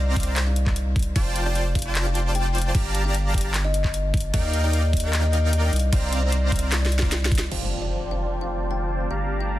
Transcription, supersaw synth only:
Already playing: C4 C5 D5 F5 A#5
0.27 C4 C5 D5 F5 A#5
1.16 F4 C5 D5 G5 A5
1.46 F4 C5 D5 G5 A5
1.85 F4 C5 D5 G5 A5
2.75 G4 D5 F5 A5 A#5
3.05 G4 D5 F5 A5 A#5
3.45 G4 D5 F5 A5 A#5
4.34 D#4 A#4 D5 F5 G5
4.64 D#4 A#4 D5 F5 G5
5.04 D#4 A#4 D5 F5 G5
5.93 C4 C5 D5 F5 A#5
6.23 C4 C5 D5 F5 A#5
6.62 C4 C5 D5 F5 A#5
7.02 C4 C5 D5 F5 A#5
7.51 F4 C5 D5 G5 A5
9.10 G4 D5 F5 A5 A#5

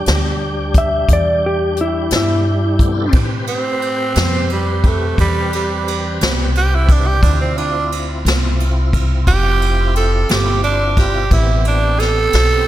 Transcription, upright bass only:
0.08 D2
1.09 E2
2.12 G2
3.13 A2
4.16 F2
5.19 E2
6.22 C2
7.23 D2
8.25 C2
9.27 F1
10.30 G1
11.31 A1
12.34 B1

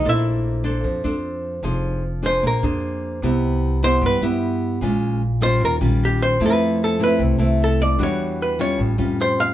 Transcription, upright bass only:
0.05 A#1
0.84 F2
1.04 F2
1.63 F1
2.43 A#1
2.63 F2
3.22 C2
4.01 G2
4.21 G2
4.81 A#1
5.60 D#2
5.81 A#1
6.40 F2
7.19 C2
7.39 C2
7.99 E2
8.78 A1
8.98 F2

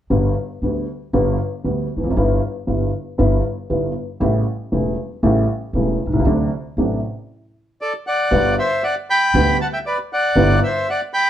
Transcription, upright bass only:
0.10 G1
0.62 D2
1.13 G1
1.65 D2
1.97 E1
2.03 F1
2.10 F#1
2.17 G1
2.68 G1
3.19 G1
3.70 G1
4.21 A1
4.72 E1
5.23 A1
5.73 E1
6.06 B1
6.12 C2
6.19 C#2
6.25 D2
6.77 A1
8.32 G1
9.34 D2
10.36 G1

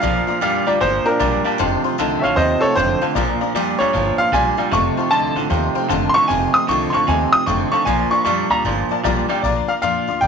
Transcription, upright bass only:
0.03 A#1
0.28 muted upright bass stroke
0.41 F2
0.67 D2
0.81 G1
1.06 muted upright bass stroke
1.20 A#1
1.60 F1
1.84 muted upright bass stroke
1.99 C2
2.23 A1
2.37 D#2
2.63 muted upright bass stroke
2.77 F1
3.02 muted upright bass stroke
3.15 A#1
3.54 F2
3.80 D2
3.94 G1
4.18 muted upright bass stroke
4.32 A#1
4.72 F1
5.11 C2
5.36 A1
5.51 D#2
5.76 muted upright bass stroke
5.90 F1
6.15 muted upright bass stroke
6.30 F1
6.54 muted upright bass stroke
6.68 C2
6.94 A1
7.08 D#2
7.34 muted upright bass stroke
7.47 F1
7.72 muted upright bass stroke
7.86 A#1
8.25 F2
8.50 D2
8.64 G1
8.90 muted upright bass stroke
9.05 A#1
9.43 A#1
9.82 F2
10.08 D2
10.22 G1

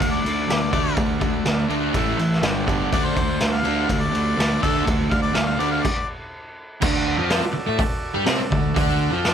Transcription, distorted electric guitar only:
0.00 D3 A3
0.25 D3 A3
0.48 D3 A3
0.71 D3 A3 D4
0.97 D3 A3
1.20 D3 A3
1.45 D3 A3
1.68 D3 A3 D4
1.94 A2 E3 A3
2.18 A2 E3
2.42 G2 D3 G3
2.66 G2 D3 G3
2.92 D3 A3 D4
3.16 D3 A3
3.41 D3 A3
3.63 D3 A3 D4
3.89 D3 A3
4.12 D3 A3
4.37 D3 A3
4.61 D3 A3 D4
4.85 D3 A3
5.09 D3 A3
5.33 D3 A3
5.57 D3 A3 D4
6.81 D3 D4
7.18 F3 F4
7.42 muted distorted electric guitar stroke
7.53 muted distorted electric guitar stroke
7.66 A3 A4
7.78 muted distorted electric guitar stroke
8.14 G3 G4
8.26 C4 C5
8.39 muted distorted electric guitar stroke
8.50 D3
8.74 D3 D4
9.11 F3 F4

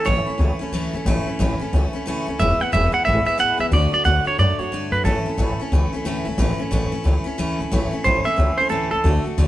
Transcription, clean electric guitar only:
0.06 C#5
2.40 E5
2.61 F#5
2.73 E5
2.94 F#5
3.05 E5
3.26 E5
3.40 F#5
3.60 E5
3.73 D5
3.94 D5
4.05 F#5
4.27 C#5
4.39 D5
4.59 C#5
4.92 B4
5.05 A4
8.04 C5
8.25 E5
8.58 C5
8.70 A4
8.91 A4

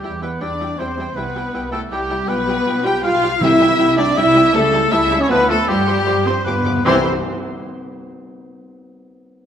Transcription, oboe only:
0.04 G4
0.23 B4
0.41 D5
0.79 C5
1.15 B4
1.72 A4
1.92 G4
2.29 B4
2.86 G5
3.04 F5
3.41 E5
3.99 D5
4.18 E5
4.55 A4
4.93 E5
5.22 C#5
5.31 B4
5.50 A4
5.69 G4
6.27 C5
6.44 B4
6.85 E4

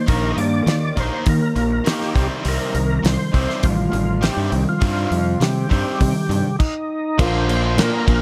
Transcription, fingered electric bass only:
0.08 A#1
0.37 G2
0.66 D#3
0.97 A#1
1.27 D#3
1.56 A#1
2.15 C2
2.45 C2
2.74 C2
3.04 C2
3.34 C2
3.64 A1
3.93 A1
4.37 G2
4.52 C2
4.81 G2
5.11 F2
5.40 C3
5.71 G2
6.01 C3
6.29 G2
7.19 A#1
7.77 A#2
8.07 A#1

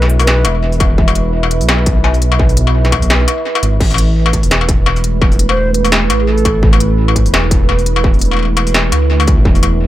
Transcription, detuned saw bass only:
Already playing: B1
0.20 B1
0.27 B1
0.45 E1
0.98 E1
1.61 B1
3.02 B1
3.10 B1
3.63 G#1
3.80 A1
4.43 E1
5.84 E1
5.92 E1
6.10 A1
6.63 A1
7.26 E1
8.67 E1
8.75 E1
8.92 D2
9.38 A1
9.45 E1

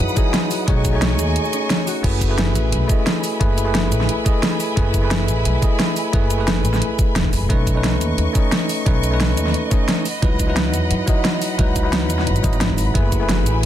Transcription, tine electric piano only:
Already playing: F#3 D#4 E4 B4
0.15 F#3 D#4 E4 D#5
0.67 A3 D#4 G#4 C#5
0.92 A3 D#4 G#4 C#5
2.03 A3 E4 G#4 B4
2.28 A3 E4 G#4 B4
2.88 A3 E4 G#4 D#5
3.39 A3 E4 G#4 B4
3.65 A3 E4 G#4 B4
4.24 A3 E4 G#4 D#5
4.76 A3 E4 G#4 B4
5.02 A3 E4 G#4 B4
5.61 A3 E4 G#4 D#5
6.13 A3 E4 G#4 B4
6.38 A3 E4 G#4 B4
7.49 A3 C#4 D#4 B4
7.74 A3 C#4 D#4 B4
8.33 A3 C#4 D#4 D#5
8.86 A3 C#4 D#4 B4
9.11 A3 C#4 D#4 B4
9.71 A3 C#4 D#4 D#5
10.22 F#3 D#4 E4 B4
10.47 F#3 D#4 E4 B4
11.06 F#3 D#4 E4 D#5
11.58 F#3 D#4 E4 B4
11.83 F#3 D#4 E4 B4
12.42 F#3 D#4 E4 D#5
12.94 A3 E4 G#4 B4
13.20 A3 E4 G#4 B4

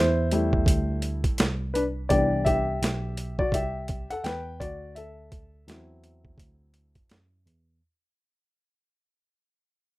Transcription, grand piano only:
Already playing: E4 C5
0.32 G3 A3 E4
1.74 D4 B4
2.09 E3 B3 D4 G4 D5
2.45 G4 E5
3.39 F#4 D5
3.54 G4 E5
4.10 A4 F#5
4.24 B4 G5
4.60 F#4 D5
4.95 A4 E5
5.68 F#3 C4 E4

